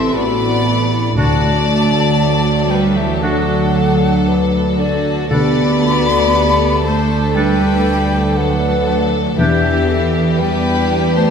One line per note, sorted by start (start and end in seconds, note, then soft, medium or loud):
0.00 1.13 A1 medium
0.00 1.14 A2 medium
0.00 1.13 C3 medium
0.00 1.14 C3 medium
0.00 1.13 E3 medium
0.00 0.14 C4 medium
0.00 1.14 E4 medium
0.00 0.14 A4 medium
0.00 1.14 A4 medium
0.00 0.14 E5 medium
0.00 0.15 C6 loud
0.13 1.18 B3 medium
0.13 0.66 F#4 medium
0.13 1.16 D5 loud
0.13 1.16 B5 loud
0.66 1.18 E4 medium
1.17 5.31 D2 medium
1.17 5.28 D2 medium
1.17 5.32 F#3 medium
1.17 2.68 A3 medium
1.17 1.57 D4 medium
1.17 5.31 D4 medium
1.17 1.57 F#4 medium
1.17 3.05 F#4 medium
1.17 5.29 A4 medium
1.17 2.68 D5 loud
1.17 2.72 A5 loud
2.70 2.96 G3 medium
2.70 2.97 B4 medium
2.70 2.98 G5 medium
2.96 3.23 E3 medium
2.96 3.22 G4 medium
2.96 3.25 E5 medium
3.22 4.79 F#3 medium
3.22 5.27 D4 medium
3.22 3.63 D4 medium
3.22 5.28 F#4 medium
3.22 3.63 F#4 medium
3.22 4.24 A4 medium
3.22 4.76 A4 medium
3.22 5.28 A4 medium
3.22 4.52 F#5 loud
4.27 4.79 B4 medium
4.78 5.32 D3 medium
4.78 5.31 F#4 medium
4.78 5.32 A4 medium
4.78 5.13 D5 medium
5.31 9.34 D2 medium
5.31 9.35 D2 medium
5.31 9.35 A3 medium
5.31 6.82 B3 medium
5.31 5.72 D4 medium
5.31 9.35 D4 medium
5.31 5.84 G4 medium
5.31 5.71 A4 medium
5.31 9.35 A4 medium
5.31 6.81 D5 loud
5.31 6.85 B5 loud
5.83 6.34 F#4 medium
6.34 6.84 G4 medium
6.84 7.36 A3 medium
6.84 8.34 A4 medium
6.84 7.35 C5 medium
6.84 7.37 A5 medium
7.35 8.38 G3 medium
7.35 7.75 D4 medium
7.35 9.35 D4 medium
7.35 7.75 A4 medium
7.35 9.35 A4 medium
7.35 8.35 B4 medium
7.35 9.35 B4 soft
7.35 8.38 G5 loud
8.37 9.39 F#3 medium
8.37 9.37 A4 medium
8.37 9.23 B4 medium
8.37 9.11 F#5 loud
9.38 11.30 E2 medium
9.38 10.37 E3 medium
9.38 11.30 B3 medium
9.38 11.30 D4 medium
9.38 9.78 D4 medium
9.38 10.39 G4 medium
9.38 9.78 G4 medium
9.38 11.30 G4 medium
9.38 9.89 G4 medium
9.38 10.41 E5 loud
9.88 10.39 A4 medium
10.39 11.16 G3 medium
10.39 11.30 B4 medium
10.39 11.15 B4 loud
10.39 11.15 G5 loud
11.15 11.30 A3 medium
11.15 11.30 C5 medium
11.15 11.30 A5 medium